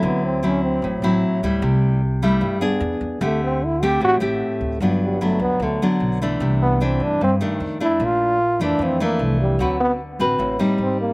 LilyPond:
<<
  \new Staff \with { instrumentName = "Trombone" } { \time 4/4 \key d \mixolydian \tempo 4 = 151 b8 c'8 cis'8 c'4 r4. | r1 | a8 c'8 e'8 g'8 fis'8 r4. | \key g \major r8 g8 a8 b8 a8 r4. |
r8 b8 c'8 d'8 c'8 r4 e'8 | f'4. d'8 c'8 bes8 a8 g8 | fis8 b8 r2 c'8 bes8 | }
  \new Staff \with { instrumentName = "Nylon-string guitar" } { \time 4/4 \key d \mixolydian << { <fis c' e'>4 <fis c' e'>4. <fis c' e'>4 <g a e'>8~ | <g a e'>4 r8 <g a e'>4 <b d' gis'>4. | <a c' g'>4 r8 <a c' g'>4 <a c' g'>4. | \key g \major <fis b d'>4 <fis b d'>4. <fis b d'>4 <e a d'>8~ |
<e a d'>4 <e a d'>4 r8 <ees a d'>4 <a d'>8~ | <a d'>4 r8 <e a d'>4 <e a d'>4. | <c' fis' b'>4 r8 <c' fis' b'>4 <g c' ees'>4. | } \\ { d2 a,2 | c2 g,4 r4 | d2 a,2 | g,2 d2 |
c2 g,4 r4 | bes,2 f,2 | d2 a,4 r4 | } >> }
  \new Staff \with { instrumentName = "Upright bass" } { \clef bass \time 4/4 \key d \mixolydian d,2 a,,8 a,,8 r8 d,8 | c,2 g,8 d,16 r16 e,8 e,8 | d,2 a,,8 a,,8 r8 d,8 | \key g \major g,,4. d,8 d,8 r8 b,,4 |
c,4. g,8 g,8 r8 f,4 | bes,,4. f,8 f,8 r8 c,4 | d,4. a,,8 a,,8 r8 aes,,4 | }
>>